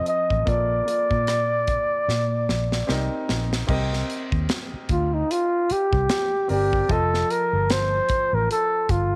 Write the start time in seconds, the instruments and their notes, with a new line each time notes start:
Already playing: grand piano F3 C4 A4 D#5
0.06 flugelhorn D#5, closed hi-hat
0.30 fingered electric bass A1, kick
0.45 fingered electric bass A#1, grand piano A#3 F4 A4 D5, flugelhorn D5, kick, closed hi-hat
0.85 grand piano A#3 F4 A4 D5, closed hi-hat
1.11 fingered electric bass A#2, kick
1.27 cross-stick, closed hi-hat
1.67 kick, closed hi-hat
2.08 fingered electric bass A#2, snare
2.49 fingered electric bass A#1, snare
2.72 snare
2.87 fingered electric bass C2, grand piano C4 D#4 G4 A#4, snare
3.29 fingered electric bass A#1, snare
3.53 snare
3.67 fingered electric bass C2, grand piano C4 G4 A#4 D#5, kick, crash
3.93 snare
4.10 closed hi-hat
4.32 fingered electric bass D#2, kick
4.49 snare, closed hi-hat
4.74 muted fingered electric bass stroke
4.89 fingered electric bass D2, flugelhorn F4, kick, closed hi-hat
5.14 flugelhorn D#4
5.31 flugelhorn F4, closed hi-hat
5.70 flugelhorn G4, muted fingered electric bass stroke, closed hi-hat
5.93 fingered electric bass C2, kick
6.09 snare, closed hi-hat
6.48 fingered electric bass G1, grand piano C4 G4 A#4 D5, flugelhorn G4, open hi-hat
6.73 kick
6.88 fingered electric bass F1, grand piano F3 F4 D#5 A5, flugelhorn A4, kick, closed hi-hat
7.14 snare
7.30 flugelhorn A#4, closed hi-hat
7.53 fingered electric bass G1
7.70 flugelhorn C5, snare, closed hi-hat
8.09 muted fingered electric bass stroke, kick, closed hi-hat
8.33 fingered electric bass A1, flugelhorn A#4
8.51 flugelhorn A4, closed hi-hat
8.89 fingered electric bass G1, flugelhorn F4, kick, closed hi-hat